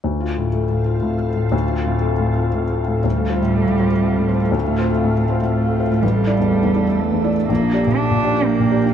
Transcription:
0.04 D2 C4 A4 F5
0.20 F4
0.37 A2
0.53 A3
0.70 A2
0.86 F4
1.02 A2
1.18 A3
1.36 A2
1.52 D2
1.68 F4
1.86 A2
2.01 A3
2.19 A2
2.36 F4
2.53 A2
2.70 A3
2.88 A2
3.02 D2 G3 C4 A4 F5
3.17 A3
3.30 F4 C5
3.41 A2
3.55 A3
3.67 A2
3.79 F4 C5
3.91 A3
4.17 A2
4.29 F4 C5
4.41 A3
4.52 D2 A3
4.65 A2
4.78 F4 C5
4.90 A3
5.04 A2
5.17 A3
5.29 F4 C5
5.41 A2
5.52 A3
5.67 A3
5.79 F4 C5
5.90 A2
6.02 A1 G3 D4 E5
6.14 A3
6.27 E4 D5
6.39 E2
6.51 A3
6.63 E2
6.76 E4 D5
6.88 A3
6.99 A3
7.12 E2
7.24 E4 D5
7.36 A3
7.49 A#1 A#3 A#4 G5
7.60 D4
7.73 G4 D5
7.87 A#2
7.97 D4
8.11 A#2
8.24 G4 D5
8.36 D4
8.46 A#3
8.60 A#2
8.71 G4 D5
8.84 D4

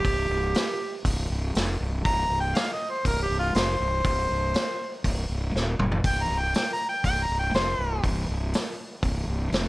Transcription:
Already playing: G4
0.05 C1, kick, open hi-hat
0.29 C1
0.54 snare, open hi-hat
1.05 C1, kick, open hi-hat
1.30 C1
1.55 F1, snare, open hi-hat
1.81 C1
2.05 C1 A#5, kick, open hi-hat
2.29 C1
2.40 G5
2.55 F5, snare, open hi-hat
2.73 D#5
2.90 C5
3.05 C1 A#4, kick, open hi-hat
3.23 G4
3.29 C1
3.39 F4
3.55 F1 C5, snare, open hi-hat
3.80 C1
4.05 C1, kick, open hi-hat
4.30 C1
4.54 snare, open hi-hat
5.04 C1, kick, open hi-hat
5.29 C1
5.54 D#1, snare
5.79 F#1, mid tom
5.92 floor tom
6.04 C1 G5, kick, open hi-hat
6.22 A#5
6.29 C1
6.39 G5
6.54 G5, snare, open hi-hat
6.73 A#5
6.89 G5
7.04 C1 G5, kick, open hi-hat
7.23 A#5
7.29 C1
7.39 G5
7.54 F1 C5, snare, open hi-hat
7.79 C1
8.04 C1, kick, open hi-hat
8.29 C1
8.53 snare, open hi-hat
9.03 C1, kick, open hi-hat
9.27 C1
9.52 F1, snare, open hi-hat

